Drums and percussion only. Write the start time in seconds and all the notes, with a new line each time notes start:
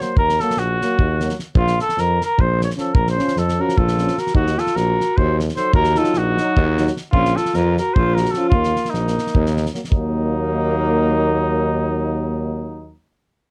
0.01 snare
0.17 kick
0.29 snare
0.40 snare
0.50 snare
0.57 snare
0.82 snare
0.99 kick
1.20 snare
1.29 snare
1.39 snare
1.55 kick
1.67 snare
1.79 snare
1.89 snare
1.98 snare
2.21 snare
2.39 kick
2.61 snare
2.70 snare
2.78 snare
2.95 kick
3.07 snare
3.19 snare
3.28 snare
3.37 snare
3.49 snare
3.69 snare
3.78 kick
3.88 snare
3.98 snare
4.08 snare
4.18 snare
4.27 snare
4.35 kick
4.47 snare
4.58 snare
4.67 snare
4.77 snare
5.00 snare
5.18 kick
5.40 snare
5.49 snare
5.56 snare
5.73 kick
5.84 snare
5.95 snare
6.04 snare
6.14 snare
6.38 snare
6.57 kick
6.78 snare
6.87 snare
6.97 snare
7.13 kick
7.25 snare
7.37 snare
7.45 snare
7.54 snare
7.77 snare
7.96 kick
8.17 snare
8.25 snare
8.34 snare
8.52 kick
8.64 snare
8.76 snare
8.85 snare
8.94 snare
9.07 snare
9.18 snare
9.27 snare
9.35 kick
9.46 snare
9.57 snare
9.66 snare
9.75 snare
9.84 snare
9.92 kick